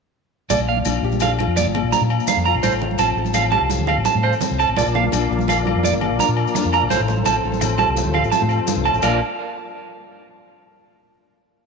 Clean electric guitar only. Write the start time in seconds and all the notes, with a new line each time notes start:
0.50 D5
0.69 F5
1.22 F5
1.57 D5
1.93 A#5
2.28 F5
2.46 A#5
2.63 C5
2.99 A5
3.35 F5
3.52 A5
3.88 F5
4.06 A5
4.24 C5
4.60 A5
4.77 D5
4.95 F5
5.49 F5
5.84 D5
6.20 A#5
6.55 muted clean electric guitar stroke
6.74 A#5
6.90 C5
7.26 A5
7.61 muted clean electric guitar stroke
7.79 A5
8.14 F5
8.32 A5
8.85 A5
9.03 A#4 D5 F5